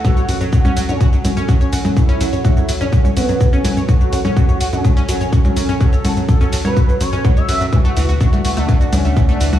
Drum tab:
HH |--o---o---o---o-|--o---o---o---o-|--o---o---o---o-|--o---o---o---o-|
SH |xxxxxxxxxxxxxxxx|xxxxxxxxxxxxxxxx|xxxxxxxxxxxxxxxx|xxxxxxxxxxxxxxxx|
CG |O----O----O----O|----O----O----O-|---O----O----O--|--O----O----O---|
BD |o---o---o---o---|o---o---o---o---|o---o---o---o---|o---o---o---o---|

HH |--o---o---o---o-|
SH |xxxxxxxxxxxxxxxx|
CG |O----O----O----O|
BD |o---o---o---o---|